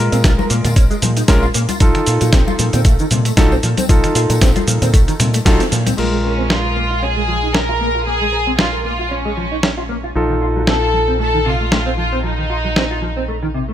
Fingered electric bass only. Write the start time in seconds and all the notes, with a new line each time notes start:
0.13 A#2
0.24 A#1
0.50 A#2
0.65 A#2
0.76 A#1
1.02 A#2
1.28 A#1
1.55 A#2
1.80 A#1
2.07 A#2
2.21 A#2
2.33 A#1
2.59 A#2
2.73 A#2
2.85 A#1
3.11 A#2
3.37 A#1
3.63 A#2
3.89 A#1
4.15 A#2
4.30 A#2
4.41 A#1
4.67 A#2
4.82 A#2
4.94 A#1
5.19 A#2
5.46 A#1
5.72 A#2
5.98 A#1
10.15 A#1